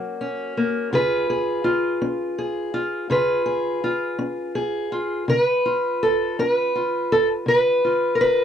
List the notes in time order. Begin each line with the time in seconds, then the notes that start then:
Already playing: F#3 A#3 C#4 F#4
0.21 C#4
0.57 A#3
0.93 C#3 F4 G#4 B4
1.30 G#4
1.64 F4
2.02 C#4
2.38 G#4
2.74 F4
3.10 C#3 F4 G#4 B4
3.46 G#4
3.84 F4
4.18 C#4
4.55 G#4
4.92 F4
5.28 C#3 B4
5.66 F4
6.03 A4
6.39 C#4 B4
6.76 F4
7.12 A4
7.46 C#3 B4
7.85 F4
8.15 A#4
8.21 B4